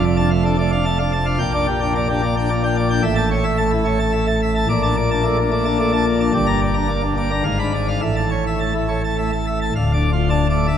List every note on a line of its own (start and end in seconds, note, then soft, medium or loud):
0.00 1.37 F1 medium
0.00 1.37 F2 medium
0.04 0.16 D5 medium
0.17 0.29 D4 medium
0.17 0.29 A5 medium
0.30 0.43 A3 medium
0.30 0.43 F5 medium
0.44 0.57 D4 medium
0.44 0.57 A4 medium
0.58 0.70 A3 medium
0.58 0.71 D5 medium
0.72 0.84 D4 medium
0.72 0.84 F5 medium
0.85 0.98 A3 medium
0.85 0.98 A5 medium
0.99 1.12 D4 medium
0.99 1.11 F5 medium
1.13 1.25 A5 medium
1.26 1.38 D4 medium
1.26 1.38 F5 medium
1.39 3.00 A#1 medium
1.39 3.00 A#2 medium
1.39 1.52 G5 loud
1.53 1.66 D4 medium
1.53 1.66 D5 medium
1.67 1.80 G4 medium
1.80 1.94 D4 medium
1.80 1.93 G5 medium
1.95 2.07 A#3 medium
1.95 2.07 D5 medium
2.09 2.21 D4 medium
2.09 2.21 G4 medium
2.23 2.35 A#3 medium
2.23 2.35 D5 medium
2.37 2.49 D4 medium
2.37 2.49 G5 medium
2.50 2.62 A#3 medium
2.50 2.62 D5 medium
2.63 2.76 D4 medium
2.63 2.76 G5 medium
2.76 2.89 D5 medium
2.90 3.02 D4 medium
2.90 3.02 G5 medium
3.03 4.65 A1 medium
3.03 4.65 A2 medium
3.03 3.16 E5 medium
3.16 3.29 A5 loud
3.31 3.44 C#5 medium
3.44 3.57 E5 medium
3.58 3.71 A3 medium
3.58 3.71 A5 medium
3.71 3.84 E4 medium
3.85 3.98 A3 medium
3.85 3.98 C#5 medium
3.99 4.12 A5 medium
4.13 4.26 A3 medium
4.13 4.26 E5 medium
4.27 4.40 A5 medium
4.42 4.55 E5 medium
4.55 4.67 A5 medium
4.69 6.30 A#1 medium
4.69 6.30 A#2 medium
4.69 4.82 D5 medium
4.83 4.95 D4 medium
4.83 4.95 A5 loud
4.97 5.09 D5 medium
5.11 5.23 D4 medium
5.11 5.23 A5 medium
5.24 5.37 A3 medium
5.24 5.37 D5 medium
5.37 5.50 D4 medium
5.51 5.64 A3 medium
5.51 5.64 D5 medium
5.65 5.78 D4 medium
5.65 5.78 A5 medium
5.79 5.91 A3 medium
5.79 5.92 D5 medium
5.93 6.05 D4 medium
5.93 6.05 A5 medium
6.06 6.19 D5 medium
6.20 6.32 D4 medium
6.20 6.32 A5 medium
6.34 7.42 G1 medium
6.34 7.42 G2 medium
6.34 6.46 D5 medium
6.46 6.60 D4 medium
6.46 6.60 A#5 loud
6.61 6.74 D5 medium
6.74 6.88 D4 medium
6.74 6.87 A#5 medium
6.88 7.02 A#3 medium
6.88 7.01 D5 medium
7.02 7.16 D4 medium
7.17 7.30 A#3 medium
7.17 7.30 D5 medium
7.31 7.43 D4 medium
7.31 7.43 A#5 medium
7.44 8.00 G#1 medium
7.44 8.00 G#2 medium
7.44 7.58 F5 medium
7.59 7.72 D4 medium
7.59 7.72 B5 medium
7.74 7.87 D5 medium
7.88 8.00 D4 medium
7.88 8.00 F5 medium
8.02 9.70 A1 medium
8.02 9.70 A2 medium
8.02 8.15 E5 medium
8.16 8.29 A5 medium
8.31 8.44 C#5 medium
8.47 8.59 E5 medium
8.60 8.73 A3 medium
8.60 8.73 A5 medium
8.75 8.87 E4 medium
8.88 9.02 A3 medium
8.88 9.01 C#5 medium
9.04 9.16 A5 medium
9.18 9.31 A3 medium
9.18 9.31 E5 medium
9.33 9.45 A5 medium
9.47 9.59 E5 medium
9.61 9.73 A5 medium
9.75 10.78 D1 medium
9.75 10.78 D2 medium
9.75 9.92 F5 medium
9.93 10.10 D4 medium
9.93 10.10 D5 medium
10.13 10.29 F4 medium
10.30 10.47 D4 medium
10.30 10.47 A5 medium
10.50 10.66 A3 medium
10.50 10.66 D5 medium
10.67 10.78 D4 medium
10.67 10.78 E5 medium